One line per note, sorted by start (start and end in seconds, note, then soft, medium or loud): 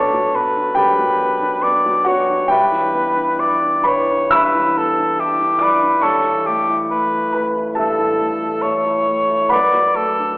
0.00 0.73 B1 medium
0.00 0.13 F#3 soft
0.00 0.35 B3 soft
0.00 0.56 D4 soft
0.00 0.73 A4 medium
0.00 2.54 B4 medium
0.00 0.37 C#5 medium
0.00 2.05 F#5 medium
0.00 0.76 A5 medium
0.00 2.54 B5 medium
0.13 0.48 F#3 soft
0.35 0.69 B3 soft
0.35 0.77 B4 medium
0.56 0.90 D4 soft
0.75 1.11 F#2 soft
0.75 2.03 G4 medium
0.75 1.64 B4 medium
0.75 2.07 G5 medium
0.98 1.33 F#3 soft
1.20 1.55 B3 soft
1.41 1.77 D4 soft
1.63 1.99 B3 soft
1.63 2.09 D5 medium
1.85 2.21 F#3 medium
2.05 2.42 B3 soft
2.05 2.47 F#4 medium
2.05 2.50 C#5 medium
2.05 2.50 F#5 medium
2.29 2.51 D4 medium
2.48 4.28 G2 medium
2.48 3.81 G4 medium
2.48 3.41 B4 medium
2.48 3.81 E5 medium
2.48 3.84 G5 medium
2.72 3.08 E3 soft
2.94 3.30 B3 soft
3.15 3.52 D4 soft
3.38 3.76 E4 medium
3.38 3.88 D5 medium
3.61 4.00 D4 soft
3.84 4.24 E4 soft
3.84 4.29 B4 medium
3.84 4.35 C#5 medium
3.84 4.30 B5 medium
4.09 4.46 D4 soft
4.31 5.99 G2 medium
4.31 4.79 B4 medium
4.31 5.57 E5 medium
4.31 5.57 B5 medium
4.31 5.60 E6 loud
4.55 4.90 E3 soft
4.77 5.11 B3 soft
4.77 5.21 A4 medium
4.98 5.32 D4 soft
5.19 5.53 E4 soft
5.19 5.64 G4 medium
5.40 5.74 D4 soft
5.59 5.95 E4 soft
5.59 6.05 B4 medium
5.59 6.00 D5 medium
5.59 6.02 D6 medium
5.82 6.04 D4 soft
6.01 7.73 G2 medium
6.01 6.48 A4 medium
6.01 7.30 C#5 medium
6.01 7.30 A5 medium
6.01 7.34 C#6 medium
6.24 6.60 E3 soft
6.46 6.82 A3 soft
6.46 6.77 G4 medium
6.69 7.04 E4 soft
6.90 7.26 A3 soft
6.90 7.49 B4 medium
7.13 7.48 E4 soft
7.33 7.69 A3 soft
7.33 7.74 B4 medium
7.33 7.76 B5 medium
7.56 7.90 E4 soft
7.75 9.47 G2 medium
7.75 9.46 A4 medium
7.75 8.63 A4 medium
7.75 9.46 E5 medium
7.75 9.50 A5 medium
7.99 8.33 E3 soft
8.20 8.55 A3 soft
8.42 8.77 E4 soft
8.62 8.99 A3 soft
8.62 9.50 C#5 medium
8.86 9.20 E4 soft
9.07 9.42 A3 soft
9.29 9.51 E4 soft
9.49 10.38 F#2 soft
9.49 10.38 B4 medium
9.49 9.97 D5 medium
9.49 10.38 F#5 medium
9.49 10.38 B5 medium
9.73 10.09 F#3 soft
9.96 10.32 A3 soft
9.96 10.38 A4 medium
10.18 10.38 D4 soft